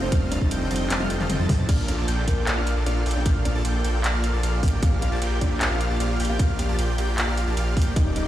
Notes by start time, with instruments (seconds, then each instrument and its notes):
Already playing: felt piano D#4
0.02 detuned saw bass F1, kalimba C4 C5, supersaw synth C4 F4 A4 D#5 G5, digital synth lead G6
0.11 detuned saw bass F1, felt piano G3 A3 C4 D#4, supersaw synth A4, digital synth lead F6, kick, closed hi-hat
0.32 kalimba D4 D5, closed hi-hat
0.40 detuned saw bass F1, felt piano G3 A3 C4 D#4, supersaw synth C4 F4 A4 D#5 A5, digital synth lead A6, kick
0.51 detuned saw bass F1, supersaw synth C4 F4 A4 D#5 G5, digital synth lead G6, closed hi-hat
0.70 detuned saw bass F1, felt piano G3 A3 C4 D#4, supersaw synth C4 F4 A4 D#5 G5, digital synth lead G6, closed hi-hat
0.76 closed hi-hat
0.90 detuned saw bass F1, supersaw synth C4 F4 A4 D#5 A5, digital synth lead A6, clap, closed hi-hat, high tom
0.99 detuned saw bass F1, felt piano G3 A3 C4 G4, supersaw synth C4 F4 A4 D#5 F5, digital synth lead F6, high tom
1.10 detuned saw bass F1, supersaw synth C4 F4 A4 D#5 G5, digital synth lead G6, closed hi-hat
1.20 detuned saw bass F1, supersaw synth C4 F4 A4 D#5 F5, digital synth lead F6, clap, mid tom
1.30 detuned saw bass F1, supersaw synth C4 F4 A4 D#5 G5, digital synth lead G6, closed hi-hat, mid tom
1.38 detuned saw bass F2, felt piano G3 A3 C4 D#4, supersaw synth C4 F4 A4 D#5 A5, digital synth lead A6
1.49 detuned saw bass F2, supersaw synth C4 F4 A4 D#5 A5, digital synth lead A6, kick, mid tom, open hi-hat
1.59 mid tom
1.69 detuned saw bass A#1, supersaw synth A#3 F4 A4 D5 F5, kalimba D4 D5, digital synth lead F6, kick, closed hi-hat, crash
1.88 kalimba D4 D5, closed hi-hat
1.98 detuned saw bass A#1, supersaw synth A#3 F4 A4 D5 A5, digital synth lead A6
2.08 detuned saw bass A#1, supersaw synth A#3 F4 A4 D5 G5, digital synth lead G6, closed hi-hat
2.28 detuned saw bass A#1, kalimba A#3 A#4, supersaw synth A#3 F4 A4 D5 G5, digital synth lead G6, kick, closed hi-hat
2.47 detuned saw bass A#1, supersaw synth A#3 F4 A4 D5 A5, digital synth lead A6, clap, closed hi-hat
2.57 detuned saw bass A#1, supersaw synth A#3 F4 A4 D5 F5, kalimba D4 D5, digital synth lead F6
2.67 closed hi-hat
2.77 detuned saw bass A#1, supersaw synth A#3 F4 A4 D5 A5, digital synth lead A6
2.86 detuned saw bass A#1, supersaw synth A#3 F4 A4 D5 F5, kalimba D4 D5, digital synth lead F6, closed hi-hat
3.06 detuned saw bass A#1, supersaw synth A#3 F4 A4 D5 G5, digital synth lead G6, open hi-hat
3.11 closed hi-hat
3.16 detuned saw bass A#1, supersaw synth A#3 F4 A4 D5 G5, kalimba D4 D5, digital synth lead G6
3.26 detuned saw bass A#1, supersaw synth A#3 F4 A4 D5 F5, digital synth lead F6, kick, closed hi-hat
3.45 kalimba D4 D5, closed hi-hat
3.55 detuned saw bass A#1, supersaw synth A#3 F4 A4 D5 A5, digital synth lead A6
3.65 detuned saw bass A#1, supersaw synth A#3 F4 A4 D5 G5, digital synth lead G6, closed hi-hat
3.84 detuned saw bass A#1, supersaw synth A#3 F4 A4 D5 G5, digital synth lead G6, closed hi-hat
4.04 detuned saw bass A#1, supersaw synth A#3 F4 A4 D5 A5, digital synth lead A6, clap, closed hi-hat
4.14 detuned saw bass A#1, supersaw synth A#3 F4 A4 D5 F5, digital synth lead F6
4.24 closed hi-hat
4.33 detuned saw bass A#1, supersaw synth A#3 F4 A4 D5 A5, digital synth lead A6
4.43 detuned saw bass A#1, supersaw synth A#3 F4 A4 D5 F5, digital synth lead F6, closed hi-hat
4.63 detuned saw bass A#1, supersaw synth A#3 F4 G4 D5 G5, digital synth lead G6, kick, open hi-hat
4.68 closed hi-hat
4.73 detuned saw bass A#1, supersaw synth A#3 F4 G4 D5 G5, digital synth lead G6
4.83 detuned saw bass A#1, supersaw synth A#3 F4 G4 D5 F5, kalimba F4 F5, digital synth lead F6, kick, closed hi-hat
5.02 kalimba F4 F5, closed hi-hat
5.12 detuned saw bass A#1, supersaw synth A#3 F4 G4 D5 A5, digital synth lead A6
5.22 detuned saw bass A#1, supersaw synth A#3 F4 G4 D5 G5, digital synth lead G6, closed hi-hat
5.41 detuned saw bass A#1, supersaw synth A#3 F4 G4 D5 G5, kalimba D4 D5, digital synth lead G6, kick, closed hi-hat
5.61 detuned saw bass A#1, supersaw synth A#3 F4 G4 D5 A5, digital synth lead A6, clap, closed hi-hat
5.71 detuned saw bass A#1, supersaw synth A#3 F4 G4 D5 F5, kalimba F4 F5, digital synth lead F6
5.81 closed hi-hat
5.90 detuned saw bass A#1, supersaw synth A#3 F4 G4 D5 A5, digital synth lead A6
6.00 detuned saw bass A#1, supersaw synth A#3 F4 G4 D5 F5, kalimba G4 G5, digital synth lead F6, closed hi-hat
6.20 detuned saw bass A#1, supersaw synth A#3 F4 G4 D5 G5, digital synth lead G6, open hi-hat
6.25 closed hi-hat
6.29 detuned saw bass A#1, supersaw synth A#3 F4 G4 D5 G5, kalimba F4 F5, digital synth lead G6
6.39 detuned saw bass A#1, supersaw synth A#3 F4 G4 D5 F5, digital synth lead F6, kick, closed hi-hat
6.59 kalimba G4 G5, closed hi-hat
6.69 detuned saw bass A#1, supersaw synth A#3 F4 G4 D5 A5, digital synth lead A6
6.79 detuned saw bass A#1, supersaw synth A#3 F4 G4 D5 G5, digital synth lead G6, closed hi-hat
6.98 detuned saw bass A#1, supersaw synth A#3 F4 G4 D5 G5, digital synth lead G6, closed hi-hat
7.18 detuned saw bass A#1, supersaw synth A#3 F4 G4 D5 A5, digital synth lead A6, clap, closed hi-hat
7.28 detuned saw bass A#1, supersaw synth A#3 F4 G4 D5 F5, digital synth lead F6
7.37 closed hi-hat
7.47 detuned saw bass A#1, supersaw synth A#3 F4 G4 D5 A5, digital synth lead A6
7.57 detuned saw bass A#1, supersaw synth A#3 F4 G4 D5 F5, digital synth lead F6, closed hi-hat
7.77 detuned saw bass A#1, supersaw synth A#3 G4 D5, digital synth lead G6, kick, open hi-hat
7.82 closed hi-hat
7.86 detuned saw bass A#1, supersaw synth A#3 F4 G4 D5 G5, digital synth lead G6
7.96 detuned saw bass D#1, supersaw synth A#3 D#4 D5, kalimba D#4 D#5, digital synth lead G6, kick, closed hi-hat
8.16 kalimba D#4 D#5, closed hi-hat